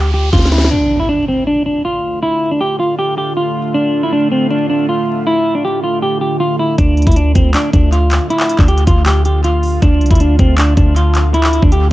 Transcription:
Already playing: D2 G4, riser
0.14 G4
0.33 D2 F4, kick, snare, closed hi-hat
0.38 snare, closed hi-hat
0.42 snare, closed hi-hat
0.47 closed hi-hat
0.52 E4, snare, closed hi-hat
0.58 snare, closed hi-hat
0.64 snare
0.71 D3 A3 D4 F4, impact
1.00 E4
1.09 D4
1.28 C4
1.47 D4
1.66 D4
1.85 F4
2.23 E4
2.51 D4
2.61 G4
2.79 F4
2.99 G4
3.18 G4
3.37 F4
3.74 D4
4.03 E4
4.13 D4
4.32 C4
4.50 D4
4.70 D4
4.89 F4
5.27 E4
5.55 D4
5.65 G4
5.83 F4
6.02 G4
6.21 G4
6.40 F4
6.59 E4
6.78 D2 D4 F4, kick, closed hi-hat
6.97 closed hi-hat
7.02 closed hi-hat
7.07 D2 E4, kick, closed hi-hat
7.12 closed hi-hat
7.16 D4, closed hi-hat
7.35 D2 C4, kick, closed hi-hat
7.54 D4, clap, closed hi-hat
7.73 D2 D4, kick, closed hi-hat
7.92 F4, closed hi-hat
8.11 clap, closed hi-hat
8.30 E4, closed hi-hat
8.40 clap
8.49 closed hi-hat
8.59 D2 D4, kick, clap
8.68 G4, closed hi-hat
8.78 closed hi-hat
8.87 D2 F4, kick, closed hi-hat
9.06 G4, clap, closed hi-hat
9.25 G4, closed hi-hat
9.44 F4, closed hi-hat
9.63 open hi-hat
9.82 D2 D3 A3 D4, kick, closed hi-hat
10.01 C2, closed hi-hat
10.06 closed hi-hat
10.11 D2 E4, kick, closed hi-hat
10.15 closed hi-hat
10.20 D4, closed hi-hat
10.39 D2 C4, kick, closed hi-hat
10.58 D4, clap, closed hi-hat
10.77 D2 D4, kick, closed hi-hat
10.96 F4, closed hi-hat
11.15 clap, closed hi-hat
11.34 E4, closed hi-hat
11.44 clap
11.53 closed hi-hat
11.62 D2 D4, kick
11.72 G4, closed hi-hat

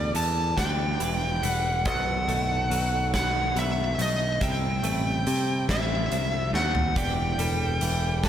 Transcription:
Already playing: D2 E2 E3 G3 D4 A4 D5
0.14 E2 E3 A5, closed hi-hat
0.57 D2 D4 B4 G5, kick, snare, closed hi-hat
1.00 E1 E3 B4, closed hi-hat
1.43 E1 G3 F#5, closed hi-hat
1.85 B1 B2 D#3 B3 A4 D#5 F#5, kick, closed hi-hat
2.28 B1 A3 A4, closed hi-hat
2.70 B1 F#3, closed hi-hat
3.14 B4 F#5, kick, snare, closed hi-hat
3.56 B1 F#3 B4 E5, closed hi-hat
3.99 B1 A3 D#5, closed hi-hat
4.41 C2 C3 G3 C4 E5 G5, kick, closed hi-hat
4.83 A1 A3 B4, closed hi-hat
5.27 C3, closed hi-hat
5.69 A1 E4 C5 E5, kick, snare, closed hi-hat
6.11 C2 C5, closed hi-hat
6.53 D#2 A3 F#5, snare
6.75 floor tom
6.96 E1 E2 E3 D4 G4 D5 G5, kick, closed hi-hat
7.38 E1 G3 A4, closed hi-hat
7.81 E1 E3, closed hi-hat
8.24 D4 B4 A5, kick, snare, closed hi-hat

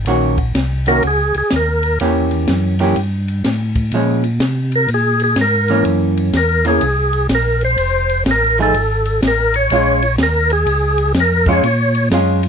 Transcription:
0.05 A#1 D#3 A#3 C#4 F#4, ride
0.38 kick, ride
0.54 C2, snare, hi-hat pedal, ride
0.86 D#3 A#3 C#4 F#4 A#4, ride
1.03 C#2, ride
1.07 G#4
1.34 C#2 G#4, ride
1.50 D#2, snare, hi-hat pedal, ride
1.56 A#4
1.83 ride
2.00 E2 E3 A#3 C#4 G4, ride
2.31 ride
2.48 F#2, snare, hi-hat pedal, ride
2.79 E3 A#3 C#4 G4, ride
2.96 G2, ride
3.28 ride
3.44 A2, snare, hi-hat pedal, ride
3.75 kick, ride
3.92 A#2 F3 G#3 C#4, ride
4.24 ride
4.40 C3, snare, hi-hat pedal, ride
4.72 A#4, ride
4.88 A#2, ride
4.94 G#4
5.20 ride
5.24 G#4
5.36 G#2, snare, hi-hat pedal, ride
5.41 A#4
5.68 E3 A#3 C#4, ride
5.85 F#2, ride
6.17 ride
6.33 E2 A#4, snare, hi-hat pedal, ride
6.65 E3 A#3 C#4 G#4, ride
6.81 C2, ride
7.13 ride
7.29 A#1, snare, hi-hat pedal, ride
7.35 A#4
7.61 C5, ride
7.77 F1, ride
8.09 ride
8.25 A1, snare, hi-hat pedal, ride
8.31 A#4
8.58 F3 A3 D#4 G#4, ride
8.62 A4
8.74 G#1, ride
9.05 ride
9.22 A1, snare, hi-hat pedal, ride
9.27 A#4
9.54 C#5, ride
9.70 A#1 G#3 C#4 F4, ride
10.02 ride
10.18 D#2, snare, hi-hat pedal, ride
10.23 A#4
10.50 G#4, ride
10.66 C#2, ride
10.98 ride
11.14 F2, snare, hi-hat pedal, ride
11.20 A#4
11.46 G#3 C#4 F4 C#5, kick, ride
11.63 A#2, ride
11.95 ride
12.11 F#2 G#3 C#4 F4, snare, hi-hat pedal, ride
12.43 ride

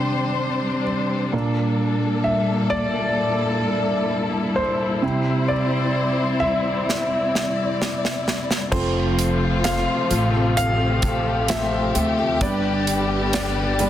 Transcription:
Already playing: C3 G3 C4 D4 G4 C5
1.33 A#2 A#3 D4 A4
2.24 E5
2.70 D5
3.18 E4
4.56 C5
5.02 C3 G3 C4 E4 C5
5.48 D5
6.40 E5
6.88 D5, snare
7.35 snare
7.82 snare
8.05 snare
8.28 snare
8.51 snare
8.72 F1 C3 F3 A3 C4 F4 A4 C5, kick, crash
9.19 closed hi-hat
9.64 F3 A3 C4 F4 A4 F5, snare, closed hi-hat
10.10 A1 A3 C4 F4 A4, closed hi-hat
10.33 C4 F4 A4
10.56 G4 F5, closed hi-hat
10.79 C4 F4 A4
11.02 A3 C4 F4 A4, kick, closed hi-hat
11.48 F3 A3 C4 F4 A4 E5, snare, closed hi-hat
11.95 D2 A3 C4 F4 A4, closed hi-hat
12.18 C4 F4 A4
12.41 G1 D3 G3 B3 D4 G4 B4 D5, kick, closed hi-hat
12.87 closed hi-hat
13.33 G3 D4 G4 B4 D5, snare, closed hi-hat
13.79 G3 B3 D4 G4 B4, closed hi-hat

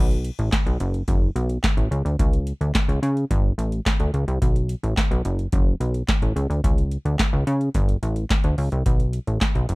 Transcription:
Already playing: B1
0.11 closed hi-hat
0.25 closed hi-hat
0.39 A1, closed hi-hat
0.52 kick, snare, clap, closed hi-hat
0.66 B1, closed hi-hat
0.80 F#1, closed hi-hat
0.94 closed hi-hat
1.08 F#1, kick, closed hi-hat
1.36 B1, closed hi-hat
1.50 closed hi-hat
1.64 kick, snare, clap, closed hi-hat
1.77 A1, closed hi-hat
1.91 C#2, closed hi-hat
2.05 D2, closed hi-hat
2.19 C#2, kick, closed hi-hat
2.33 closed hi-hat
2.47 closed hi-hat
2.61 D2, closed hi-hat
2.75 kick, snare, clap, closed hi-hat
2.89 C#2, closed hi-hat
3.02 C#3, closed hi-hat
3.17 closed hi-hat
3.31 G1, kick, closed hi-hat
3.58 A1, closed hi-hat
3.72 closed hi-hat
3.86 kick, snare, clap, closed hi-hat
4.00 D2, closed hi-hat
4.14 C#2, closed hi-hat
4.28 C2, closed hi-hat
4.42 B1, kick, closed hi-hat
4.56 closed hi-hat
4.69 closed hi-hat
4.83 A1, closed hi-hat
4.97 kick, snare, clap, closed hi-hat
5.11 B1, closed hi-hat
5.25 F#1, closed hi-hat
5.39 closed hi-hat
5.52 F#1, kick, closed hi-hat
5.80 B1, closed hi-hat
5.94 closed hi-hat
6.08 kick, snare, clap, closed hi-hat
6.22 A1, closed hi-hat
6.36 C#2, closed hi-hat
6.50 D2, closed hi-hat
6.64 C#2, kick, closed hi-hat
6.78 closed hi-hat
6.91 closed hi-hat
7.05 D2, closed hi-hat
7.19 kick, snare, clap, closed hi-hat
7.33 C#2
7.47 C#3, closed hi-hat
7.61 closed hi-hat
7.74 G1, kick, closed hi-hat
7.89 closed hi-hat
8.03 A1, closed hi-hat
8.16 closed hi-hat
8.30 kick, snare, clap, closed hi-hat
8.44 D2, closed hi-hat
8.58 C#2, open hi-hat
8.72 C2, closed hi-hat
8.86 B1, kick, closed hi-hat
9.00 closed hi-hat
9.13 closed hi-hat
9.27 A1, closed hi-hat
9.41 kick, snare, clap, closed hi-hat
9.55 B1, closed hi-hat
9.69 F#1, closed hi-hat

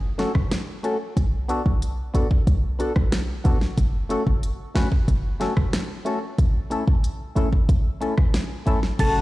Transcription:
Already playing: F#1
0.18 A3 C#4 F#4 A4, snare, closed hi-hat
0.35 G#1, kick, cross-stick
0.51 snare, closed hi-hat
0.83 A3 C#4 F#4 A4, closed hi-hat
1.17 B1, kick, closed hi-hat
1.48 B3 D4 F#4 A4, closed hi-hat
1.66 B1, kick
1.82 closed hi-hat
2.14 A1 B3 D4 F#4 A4, closed hi-hat
2.31 kick
2.47 B1, kick, closed hi-hat
2.79 B3 D4 F#4 A4, closed hi-hat
2.96 B1, kick, cross-stick
3.12 snare, closed hi-hat
3.44 A1 B3 D4 F#4 A4, kick, closed hi-hat
3.61 snare
3.78 F#1, kick, closed hi-hat
4.09 A3 C#4 F#4 A4, closed hi-hat
4.27 F#1, kick
4.43 closed hi-hat
4.75 A1 A3 C#4 F#4 B4, snare, closed hi-hat
4.92 kick
5.08 F#1, kick, closed hi-hat
5.40 A3 C#4 F#4 A4, snare, closed hi-hat
5.57 G#1, kick, cross-stick
5.73 snare, closed hi-hat
6.05 A3 C#4 F#4 A4, closed hi-hat
6.38 A1, kick, closed hi-hat
6.70 A3 C#4 E4 A4, closed hi-hat
6.88 A1, kick
7.04 closed hi-hat
7.35 G#1 A3 C#4 E4 A4, closed hi-hat
7.53 kick
7.69 A1, kick, closed hi-hat
8.01 A3 C#4 E4 A4, closed hi-hat
8.18 A1, kick, cross-stick
8.34 snare, closed hi-hat
8.66 G#1 A3 C#4 E4 A4, closed hi-hat
8.83 snare
8.99 F#1 C#3 F#3 A3 F#4 A5, kick, closed hi-hat, crash

